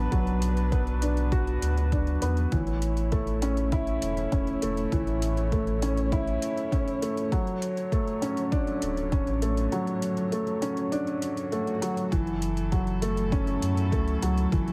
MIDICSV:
0, 0, Header, 1, 6, 480
1, 0, Start_track
1, 0, Tempo, 600000
1, 98, Time_signature, 4, 2, 24, 8
1, 11782, End_track
2, 0, Start_track
2, 0, Title_t, "String quartet"
2, 0, Program_c, 0, 48
2, 0, Note_on_c, 0, 54, 82
2, 0, Note_on_c, 0, 62, 72
2, 0, Note_on_c, 0, 71, 92
2, 1982, Note_off_c, 0, 62, 0
2, 1985, Note_off_c, 0, 71, 0
2, 1988, Note_off_c, 0, 54, 0
2, 2009, Note_on_c, 0, 73, 84
2, 2010, Note_on_c, 0, 57, 78
2, 2014, Note_on_c, 0, 64, 73
2, 5822, Note_off_c, 0, 57, 0
2, 5824, Note_off_c, 0, 64, 0
2, 5857, Note_on_c, 0, 54, 77
2, 5858, Note_on_c, 0, 50, 75
2, 9661, Note_off_c, 0, 73, 0
2, 9666, Note_off_c, 0, 50, 0
2, 9691, Note_on_c, 0, 64, 74
2, 9694, Note_on_c, 0, 69, 88
2, 11782, Note_off_c, 0, 54, 0
2, 11782, Note_off_c, 0, 64, 0
2, 11782, Note_off_c, 0, 69, 0
2, 11782, End_track
3, 0, Start_track
3, 0, Title_t, "Upright piano"
3, 0, Program_c, 1, 0
3, 0, Control_c, 1, 64, 127
3, 0, Note_on_c, 1, 59, 70
3, 0, Note_on_c, 1, 62, 77
3, 0, Note_on_c, 1, 66, 90
3, 95, Note_on_c, 1, 54, 78
3, 324, Note_off_c, 1, 54, 0
3, 576, Note_off_c, 1, 59, 0
3, 576, Note_on_c, 1, 59, 74
3, 805, Note_off_c, 1, 59, 0
3, 816, Note_off_c, 1, 62, 0
3, 816, Note_on_c, 1, 62, 78
3, 1045, Note_off_c, 1, 62, 0
3, 1057, Note_off_c, 1, 66, 0
3, 1057, Note_on_c, 1, 66, 95
3, 1285, Note_off_c, 1, 66, 0
3, 1537, Note_on_c, 1, 62, 73
3, 1674, Note_off_c, 1, 62, 0
3, 1777, Note_on_c, 1, 59, 72
3, 1914, Note_off_c, 1, 59, 0
3, 2018, Note_on_c, 1, 52, 79
3, 2028, Control_c, 1, 64, 0
3, 2157, Control_c, 1, 64, 127
3, 2246, Note_off_c, 1, 52, 0
3, 2496, Note_on_c, 1, 57, 77
3, 2725, Note_off_c, 1, 57, 0
3, 2739, Note_on_c, 1, 61, 78
3, 2966, Note_off_c, 1, 61, 0
3, 2979, Note_on_c, 1, 64, 97
3, 3206, Note_off_c, 1, 64, 0
3, 3457, Note_on_c, 1, 61, 78
3, 3594, Note_off_c, 1, 61, 0
3, 3698, Note_on_c, 1, 57, 78
3, 3834, Note_off_c, 1, 57, 0
3, 3940, Note_on_c, 1, 52, 82
3, 4167, Note_off_c, 1, 52, 0
3, 4421, Note_on_c, 1, 57, 76
3, 4647, Note_off_c, 1, 57, 0
3, 4660, Note_on_c, 1, 61, 81
3, 4887, Note_off_c, 1, 61, 0
3, 4899, Note_on_c, 1, 64, 95
3, 5126, Note_off_c, 1, 64, 0
3, 5378, Note_on_c, 1, 61, 76
3, 5515, Note_off_c, 1, 61, 0
3, 5617, Note_on_c, 1, 57, 75
3, 5754, Note_off_c, 1, 57, 0
3, 5856, Note_on_c, 1, 54, 86
3, 5869, Control_c, 1, 64, 0
3, 6029, Control_c, 1, 64, 127
3, 6085, Note_off_c, 1, 54, 0
3, 6336, Note_on_c, 1, 57, 78
3, 6565, Note_off_c, 1, 57, 0
3, 6576, Note_on_c, 1, 61, 77
3, 6805, Note_off_c, 1, 61, 0
3, 6815, Note_on_c, 1, 62, 97
3, 7044, Note_off_c, 1, 62, 0
3, 7296, Note_on_c, 1, 61, 78
3, 7434, Note_off_c, 1, 61, 0
3, 7537, Note_on_c, 1, 57, 75
3, 7674, Note_off_c, 1, 57, 0
3, 7778, Note_on_c, 1, 54, 84
3, 8006, Note_off_c, 1, 54, 0
3, 8257, Note_on_c, 1, 57, 73
3, 8486, Note_off_c, 1, 57, 0
3, 8496, Note_on_c, 1, 61, 78
3, 8725, Note_off_c, 1, 61, 0
3, 8735, Note_on_c, 1, 62, 93
3, 8964, Note_off_c, 1, 62, 0
3, 9217, Note_on_c, 1, 57, 75
3, 9354, Note_off_c, 1, 57, 0
3, 9454, Note_on_c, 1, 54, 75
3, 9593, Note_off_c, 1, 54, 0
3, 9694, Note_on_c, 1, 52, 88
3, 9709, Control_c, 1, 64, 0
3, 9844, Control_c, 1, 64, 127
3, 9924, Note_off_c, 1, 52, 0
3, 10177, Note_on_c, 1, 54, 79
3, 10405, Note_off_c, 1, 54, 0
3, 10417, Note_on_c, 1, 57, 83
3, 10645, Note_off_c, 1, 57, 0
3, 10658, Note_on_c, 1, 61, 94
3, 10886, Note_off_c, 1, 61, 0
3, 11139, Note_on_c, 1, 57, 77
3, 11275, Note_off_c, 1, 57, 0
3, 11379, Note_on_c, 1, 54, 75
3, 11515, Note_off_c, 1, 54, 0
3, 11619, Note_on_c, 1, 52, 86
3, 11782, Note_off_c, 1, 52, 0
3, 11782, End_track
4, 0, Start_track
4, 0, Title_t, "Sub bass"
4, 0, Program_c, 2, 38
4, 96, Note_on_c, 2, 35, 100
4, 1259, Note_off_c, 2, 35, 0
4, 1293, Note_on_c, 2, 38, 96
4, 1738, Note_off_c, 2, 38, 0
4, 1777, Note_on_c, 2, 40, 101
4, 1970, Note_off_c, 2, 40, 0
4, 2018, Note_on_c, 2, 33, 93
4, 3180, Note_off_c, 2, 33, 0
4, 3217, Note_on_c, 2, 28, 95
4, 3410, Note_off_c, 2, 28, 0
4, 3457, Note_on_c, 2, 28, 93
4, 3650, Note_off_c, 2, 28, 0
4, 3700, Note_on_c, 2, 28, 85
4, 3892, Note_off_c, 2, 28, 0
4, 3937, Note_on_c, 2, 33, 100
4, 5100, Note_off_c, 2, 33, 0
4, 7055, Note_on_c, 2, 26, 112
4, 7379, Note_off_c, 2, 26, 0
4, 7416, Note_on_c, 2, 33, 110
4, 7739, Note_off_c, 2, 33, 0
4, 9697, Note_on_c, 2, 30, 101
4, 10860, Note_off_c, 2, 30, 0
4, 10896, Note_on_c, 2, 42, 98
4, 11137, Note_on_c, 2, 37, 88
4, 11149, Note_off_c, 2, 42, 0
4, 11331, Note_off_c, 2, 37, 0
4, 11379, Note_on_c, 2, 37, 83
4, 11572, Note_off_c, 2, 37, 0
4, 11618, Note_on_c, 2, 30, 99
4, 11782, Note_off_c, 2, 30, 0
4, 11782, End_track
5, 0, Start_track
5, 0, Title_t, "Swell"
5, 0, Program_c, 3, 103
5, 8735, Note_on_c, 3, 60, 62
5, 9696, Note_off_c, 3, 60, 0
5, 11782, End_track
6, 0, Start_track
6, 0, Title_t, "Drums"
6, 96, Note_on_c, 9, 42, 47
6, 97, Note_on_c, 9, 36, 110
6, 176, Note_off_c, 9, 42, 0
6, 177, Note_off_c, 9, 36, 0
6, 216, Note_on_c, 9, 42, 22
6, 296, Note_off_c, 9, 42, 0
6, 335, Note_on_c, 9, 42, 72
6, 415, Note_off_c, 9, 42, 0
6, 455, Note_on_c, 9, 42, 32
6, 535, Note_off_c, 9, 42, 0
6, 576, Note_on_c, 9, 36, 104
6, 576, Note_on_c, 9, 42, 40
6, 656, Note_off_c, 9, 36, 0
6, 656, Note_off_c, 9, 42, 0
6, 696, Note_on_c, 9, 42, 21
6, 776, Note_off_c, 9, 42, 0
6, 816, Note_on_c, 9, 42, 73
6, 896, Note_off_c, 9, 42, 0
6, 936, Note_on_c, 9, 42, 31
6, 1016, Note_off_c, 9, 42, 0
6, 1056, Note_on_c, 9, 36, 105
6, 1058, Note_on_c, 9, 42, 43
6, 1136, Note_off_c, 9, 36, 0
6, 1138, Note_off_c, 9, 42, 0
6, 1179, Note_on_c, 9, 42, 22
6, 1259, Note_off_c, 9, 42, 0
6, 1299, Note_on_c, 9, 42, 79
6, 1379, Note_off_c, 9, 42, 0
6, 1420, Note_on_c, 9, 42, 33
6, 1500, Note_off_c, 9, 42, 0
6, 1537, Note_on_c, 9, 36, 104
6, 1537, Note_on_c, 9, 42, 46
6, 1617, Note_off_c, 9, 36, 0
6, 1617, Note_off_c, 9, 42, 0
6, 1657, Note_on_c, 9, 42, 24
6, 1737, Note_off_c, 9, 42, 0
6, 1775, Note_on_c, 9, 42, 75
6, 1855, Note_off_c, 9, 42, 0
6, 1896, Note_on_c, 9, 42, 30
6, 1976, Note_off_c, 9, 42, 0
6, 2016, Note_on_c, 9, 42, 44
6, 2018, Note_on_c, 9, 36, 101
6, 2096, Note_off_c, 9, 42, 0
6, 2098, Note_off_c, 9, 36, 0
6, 2135, Note_on_c, 9, 42, 21
6, 2215, Note_off_c, 9, 42, 0
6, 2256, Note_on_c, 9, 42, 68
6, 2336, Note_off_c, 9, 42, 0
6, 2376, Note_on_c, 9, 42, 31
6, 2456, Note_off_c, 9, 42, 0
6, 2495, Note_on_c, 9, 42, 41
6, 2498, Note_on_c, 9, 36, 104
6, 2575, Note_off_c, 9, 42, 0
6, 2578, Note_off_c, 9, 36, 0
6, 2617, Note_on_c, 9, 42, 21
6, 2697, Note_off_c, 9, 42, 0
6, 2737, Note_on_c, 9, 42, 69
6, 2817, Note_off_c, 9, 42, 0
6, 2857, Note_on_c, 9, 42, 29
6, 2937, Note_off_c, 9, 42, 0
6, 2976, Note_on_c, 9, 42, 41
6, 2978, Note_on_c, 9, 36, 105
6, 3056, Note_off_c, 9, 42, 0
6, 3058, Note_off_c, 9, 36, 0
6, 3097, Note_on_c, 9, 42, 21
6, 3177, Note_off_c, 9, 42, 0
6, 3216, Note_on_c, 9, 42, 75
6, 3296, Note_off_c, 9, 42, 0
6, 3337, Note_on_c, 9, 42, 30
6, 3417, Note_off_c, 9, 42, 0
6, 3457, Note_on_c, 9, 42, 41
6, 3458, Note_on_c, 9, 36, 104
6, 3537, Note_off_c, 9, 42, 0
6, 3538, Note_off_c, 9, 36, 0
6, 3578, Note_on_c, 9, 42, 22
6, 3658, Note_off_c, 9, 42, 0
6, 3698, Note_on_c, 9, 42, 73
6, 3778, Note_off_c, 9, 42, 0
6, 3818, Note_on_c, 9, 42, 31
6, 3898, Note_off_c, 9, 42, 0
6, 3937, Note_on_c, 9, 36, 99
6, 3938, Note_on_c, 9, 42, 42
6, 4017, Note_off_c, 9, 36, 0
6, 4018, Note_off_c, 9, 42, 0
6, 4057, Note_on_c, 9, 42, 21
6, 4137, Note_off_c, 9, 42, 0
6, 4177, Note_on_c, 9, 42, 71
6, 4257, Note_off_c, 9, 42, 0
6, 4298, Note_on_c, 9, 42, 31
6, 4378, Note_off_c, 9, 42, 0
6, 4417, Note_on_c, 9, 36, 100
6, 4417, Note_on_c, 9, 42, 41
6, 4497, Note_off_c, 9, 36, 0
6, 4497, Note_off_c, 9, 42, 0
6, 4537, Note_on_c, 9, 42, 20
6, 4617, Note_off_c, 9, 42, 0
6, 4658, Note_on_c, 9, 42, 66
6, 4738, Note_off_c, 9, 42, 0
6, 4779, Note_on_c, 9, 42, 30
6, 4859, Note_off_c, 9, 42, 0
6, 4898, Note_on_c, 9, 36, 101
6, 4899, Note_on_c, 9, 42, 40
6, 4978, Note_off_c, 9, 36, 0
6, 4979, Note_off_c, 9, 42, 0
6, 5020, Note_on_c, 9, 42, 20
6, 5100, Note_off_c, 9, 42, 0
6, 5138, Note_on_c, 9, 42, 76
6, 5218, Note_off_c, 9, 42, 0
6, 5260, Note_on_c, 9, 42, 29
6, 5340, Note_off_c, 9, 42, 0
6, 5378, Note_on_c, 9, 36, 103
6, 5381, Note_on_c, 9, 42, 42
6, 5458, Note_off_c, 9, 36, 0
6, 5461, Note_off_c, 9, 42, 0
6, 5501, Note_on_c, 9, 42, 20
6, 5581, Note_off_c, 9, 42, 0
6, 5619, Note_on_c, 9, 42, 71
6, 5699, Note_off_c, 9, 42, 0
6, 5739, Note_on_c, 9, 42, 29
6, 5819, Note_off_c, 9, 42, 0
6, 5857, Note_on_c, 9, 36, 96
6, 5858, Note_on_c, 9, 42, 42
6, 5937, Note_off_c, 9, 36, 0
6, 5938, Note_off_c, 9, 42, 0
6, 5978, Note_on_c, 9, 42, 19
6, 6058, Note_off_c, 9, 42, 0
6, 6097, Note_on_c, 9, 42, 69
6, 6177, Note_off_c, 9, 42, 0
6, 6218, Note_on_c, 9, 42, 30
6, 6298, Note_off_c, 9, 42, 0
6, 6337, Note_on_c, 9, 36, 101
6, 6340, Note_on_c, 9, 42, 39
6, 6417, Note_off_c, 9, 36, 0
6, 6420, Note_off_c, 9, 42, 0
6, 6460, Note_on_c, 9, 42, 19
6, 6540, Note_off_c, 9, 42, 0
6, 6578, Note_on_c, 9, 42, 66
6, 6658, Note_off_c, 9, 42, 0
6, 6697, Note_on_c, 9, 42, 28
6, 6777, Note_off_c, 9, 42, 0
6, 6817, Note_on_c, 9, 36, 100
6, 6817, Note_on_c, 9, 42, 41
6, 6897, Note_off_c, 9, 36, 0
6, 6897, Note_off_c, 9, 42, 0
6, 6938, Note_on_c, 9, 42, 20
6, 7018, Note_off_c, 9, 42, 0
6, 7056, Note_on_c, 9, 42, 73
6, 7136, Note_off_c, 9, 42, 0
6, 7178, Note_on_c, 9, 42, 28
6, 7258, Note_off_c, 9, 42, 0
6, 7297, Note_on_c, 9, 36, 101
6, 7297, Note_on_c, 9, 42, 41
6, 7377, Note_off_c, 9, 36, 0
6, 7377, Note_off_c, 9, 42, 0
6, 7417, Note_on_c, 9, 42, 19
6, 7497, Note_off_c, 9, 42, 0
6, 7537, Note_on_c, 9, 42, 68
6, 7617, Note_off_c, 9, 42, 0
6, 7659, Note_on_c, 9, 42, 30
6, 7739, Note_off_c, 9, 42, 0
6, 7778, Note_on_c, 9, 42, 45
6, 7858, Note_off_c, 9, 42, 0
6, 7898, Note_on_c, 9, 42, 19
6, 7978, Note_off_c, 9, 42, 0
6, 8018, Note_on_c, 9, 42, 70
6, 8098, Note_off_c, 9, 42, 0
6, 8137, Note_on_c, 9, 42, 30
6, 8217, Note_off_c, 9, 42, 0
6, 8258, Note_on_c, 9, 42, 40
6, 8338, Note_off_c, 9, 42, 0
6, 8376, Note_on_c, 9, 42, 19
6, 8456, Note_off_c, 9, 42, 0
6, 8497, Note_on_c, 9, 42, 65
6, 8577, Note_off_c, 9, 42, 0
6, 8616, Note_on_c, 9, 42, 30
6, 8696, Note_off_c, 9, 42, 0
6, 8738, Note_on_c, 9, 42, 40
6, 8818, Note_off_c, 9, 42, 0
6, 8858, Note_on_c, 9, 42, 21
6, 8938, Note_off_c, 9, 42, 0
6, 8977, Note_on_c, 9, 42, 73
6, 9057, Note_off_c, 9, 42, 0
6, 9098, Note_on_c, 9, 42, 30
6, 9178, Note_off_c, 9, 42, 0
6, 9218, Note_on_c, 9, 42, 40
6, 9298, Note_off_c, 9, 42, 0
6, 9339, Note_on_c, 9, 42, 22
6, 9419, Note_off_c, 9, 42, 0
6, 9458, Note_on_c, 9, 42, 72
6, 9538, Note_off_c, 9, 42, 0
6, 9578, Note_on_c, 9, 42, 31
6, 9658, Note_off_c, 9, 42, 0
6, 9697, Note_on_c, 9, 36, 103
6, 9699, Note_on_c, 9, 42, 44
6, 9777, Note_off_c, 9, 36, 0
6, 9779, Note_off_c, 9, 42, 0
6, 9818, Note_on_c, 9, 42, 20
6, 9898, Note_off_c, 9, 42, 0
6, 9936, Note_on_c, 9, 42, 74
6, 10016, Note_off_c, 9, 42, 0
6, 10056, Note_on_c, 9, 42, 31
6, 10136, Note_off_c, 9, 42, 0
6, 10177, Note_on_c, 9, 36, 106
6, 10177, Note_on_c, 9, 42, 44
6, 10257, Note_off_c, 9, 36, 0
6, 10257, Note_off_c, 9, 42, 0
6, 10296, Note_on_c, 9, 42, 21
6, 10376, Note_off_c, 9, 42, 0
6, 10417, Note_on_c, 9, 42, 69
6, 10497, Note_off_c, 9, 42, 0
6, 10538, Note_on_c, 9, 42, 31
6, 10618, Note_off_c, 9, 42, 0
6, 10658, Note_on_c, 9, 36, 109
6, 10659, Note_on_c, 9, 42, 43
6, 10738, Note_off_c, 9, 36, 0
6, 10739, Note_off_c, 9, 42, 0
6, 10778, Note_on_c, 9, 42, 22
6, 10858, Note_off_c, 9, 42, 0
6, 10899, Note_on_c, 9, 42, 76
6, 10979, Note_off_c, 9, 42, 0
6, 11019, Note_on_c, 9, 42, 30
6, 11099, Note_off_c, 9, 42, 0
6, 11138, Note_on_c, 9, 36, 101
6, 11140, Note_on_c, 9, 42, 44
6, 11218, Note_off_c, 9, 36, 0
6, 11220, Note_off_c, 9, 42, 0
6, 11261, Note_on_c, 9, 42, 22
6, 11341, Note_off_c, 9, 42, 0
6, 11380, Note_on_c, 9, 42, 74
6, 11460, Note_off_c, 9, 42, 0
6, 11500, Note_on_c, 9, 42, 30
6, 11580, Note_off_c, 9, 42, 0
6, 11618, Note_on_c, 9, 36, 104
6, 11621, Note_on_c, 9, 42, 45
6, 11698, Note_off_c, 9, 36, 0
6, 11701, Note_off_c, 9, 42, 0
6, 11741, Note_on_c, 9, 42, 22
6, 11782, Note_off_c, 9, 42, 0
6, 11782, End_track
0, 0, End_of_file